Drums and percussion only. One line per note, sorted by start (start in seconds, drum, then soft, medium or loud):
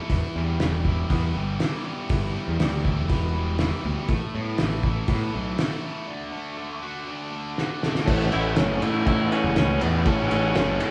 0.10 kick medium
0.10 open hi-hat soft
0.60 snare loud
0.60 open hi-hat soft
0.85 kick medium
1.10 kick medium
1.10 open hi-hat soft
1.60 snare loud
1.60 open hi-hat soft
2.09 kick loud
2.09 open hi-hat soft
2.60 snare loud
2.60 open hi-hat medium
2.85 kick medium
3.09 kick loud
3.09 open hi-hat soft
3.59 snare loud
3.59 open hi-hat soft
4.08 kick loud
4.08 open hi-hat soft
4.58 snare loud
4.58 open hi-hat soft
4.83 kick medium
5.08 kick loud
5.08 open hi-hat soft
5.58 snare loud
5.58 open hi-hat soft
7.58 snare medium
7.83 snare medium
7.95 snare medium
8.07 kick loud
8.07 crash loud
8.20 snare soft
8.32 ride medium
8.56 snare loud
8.56 ride loud
8.82 ride medium
9.06 kick loud
9.06 ride loud
9.32 ride medium
9.56 snare loud
9.56 ride loud
9.81 ride medium
10.06 kick loud
10.06 ride loud
10.31 ride medium
10.55 snare loud
10.55 ride loud
10.80 ride medium